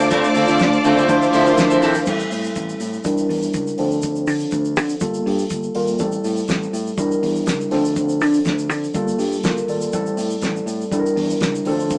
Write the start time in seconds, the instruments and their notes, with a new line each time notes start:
Already playing: fingered electric bass D2, tine electric piano A3 D4 F4 C5, string section A3 F4 C5 D5 F5 A5 D6
0.00 muted clean electric guitar stroke
0.11 clean electric guitar A3 C4 F4 A4, kick, closed hi-hat, shaker
0.24 shaker
0.34 fingered electric bass D3, clean electric guitar A3 C4 F4 A4, open hi-hat, shaker
0.47 fingered electric bass D3, clean electric guitar A3 C4 F4 A4, shaker
0.59 fingered electric bass D2, muted clean electric guitar stroke, kick, snare, closed hi-hat, shaker
0.73 muted clean electric guitar stroke, shaker
0.84 fingered electric bass D3, tine electric piano A3 D4 F4 C5, clean electric guitar A3 C4 F4 A4, open hi-hat, shaker
0.97 fingered electric bass D3, clean electric guitar A3 C4 F4 A4, shaker
1.09 fingered electric bass D2, tine electric piano F3 D4 E4 C5, string section A3 F4 C5 D5 E5, muted clean electric guitar stroke, kick, closed hi-hat, shaker
1.22 muted clean electric guitar stroke, shaker
1.33 fingered electric bass D3, clean electric guitar F3 C4 E4 A4, open hi-hat, shaker
1.46 tine electric piano F3 D4 E4 A#4, muted clean electric guitar stroke, shaker
1.54 tine electric piano C5, muted clean electric guitar stroke, closed hi-hat, shaker
1.58 fingered electric bass D2, kick, snare
1.70 clean electric guitar F3 C4 E4 A4, shaker
1.82 fingered electric bass G#1, clean electric guitar F3 C4 E4 A4, snare, open hi-hat, shaker
1.94 muted clean electric guitar stroke, shaker
2.06 fingered electric bass A1, tine electric piano G3 C4 E4 A4, kick, crash, shaker
2.19 shaker
2.31 fingered electric bass A2, open hi-hat, shaker
2.44 shaker
2.55 fingered electric bass A1, kick, closed hi-hat, shaker
2.69 shaker
2.80 fingered electric bass A2, open hi-hat, shaker
2.93 shaker
3.04 fingered electric bass E1, tine electric piano G3 D4 E4 A#4, kick, closed hi-hat, shaker
3.18 shaker
3.29 fingered electric bass E2, open hi-hat
3.42 shaker
3.54 fingered electric bass C#2, kick, closed hi-hat, shaker
3.67 shaker
3.78 fingered electric bass D2, tine electric piano F3 C4 D4 A4, open hi-hat
3.91 shaker
4.02 kick, closed hi-hat, shaker
4.15 shaker
4.27 fingered electric bass D3, open hi-hat, shaker
4.39 shaker
4.51 fingered electric bass D2, kick, closed hi-hat, shaker
4.65 shaker
4.76 fingered electric bass D3, open hi-hat, shaker
4.89 shaker
5.00 fingered electric bass G1, tine electric piano G3 A#3 F4 A4, kick, closed hi-hat, shaker
5.14 shaker
5.26 fingered electric bass G2, open hi-hat
5.38 shaker
5.50 fingered electric bass G1, kick, closed hi-hat, shaker
5.63 shaker
5.75 fingered electric bass G#1, tine electric piano G3 A#3 F4 A#4, open hi-hat
5.87 shaker
5.99 fingered electric bass A1, tine electric piano G3 C4 E4 A4, kick, closed hi-hat, shaker
6.12 shaker
6.24 fingered electric bass A2, open hi-hat, shaker
6.37 shaker
6.48 fingered electric bass A1, kick, snare, closed hi-hat, shaker
6.63 shaker
6.73 fingered electric bass A2, open hi-hat, shaker
6.87 shaker
6.98 fingered electric bass E1, tine electric piano G3 D4 E4 A#4, kick, closed hi-hat, shaker
7.11 shaker
7.23 fingered electric bass E2, open hi-hat
7.36 shaker
7.46 fingered electric bass C#2, kick, snare, closed hi-hat, shaker
7.61 shaker
7.71 fingered electric bass D2, tine electric piano F3 C4 D4 A4, snare, open hi-hat
7.85 shaker
7.96 kick, closed hi-hat, shaker
8.09 shaker
8.21 fingered electric bass D3, open hi-hat, shaker
8.34 shaker
8.45 fingered electric bass D2, kick, snare, closed hi-hat, shaker
8.59 shaker
8.70 fingered electric bass D3, open hi-hat, shaker
8.84 shaker
8.94 fingered electric bass G1, tine electric piano G3 A#3 F4 A4, kick, closed hi-hat, shaker
9.08 shaker
9.19 fingered electric bass G2, open hi-hat, shaker
9.32 shaker
9.43 fingered electric bass G1, tine electric piano F4 A#4, kick, snare, closed hi-hat, shaker
9.57 shaker
9.68 fingered electric bass G#1, tine electric piano A4 D5, open hi-hat, shaker
9.81 shaker
9.93 fingered electric bass A1, tine electric piano G3 C4 E4 A4, kick, closed hi-hat, shaker
10.06 shaker
10.17 fingered electric bass A2, open hi-hat, shaker
10.30 shaker
10.41 fingered electric bass A1, kick, snare, closed hi-hat, shaker
10.56 shaker
10.66 fingered electric bass A2, open hi-hat, shaker
10.81 shaker
10.91 fingered electric bass E1, tine electric piano G3 D4 E4 A4, kick, closed hi-hat, shaker
11.00 tine electric piano A#4
11.06 shaker
11.16 fingered electric bass E2, open hi-hat
11.30 shaker
11.40 fingered electric bass C#2, kick, snare, closed hi-hat, shaker
11.55 shaker
11.65 fingered electric bass D2, tine electric piano E3 C4 D4 A4, open hi-hat
11.71 tine electric piano F3
11.80 shaker
11.90 kick, closed hi-hat, shaker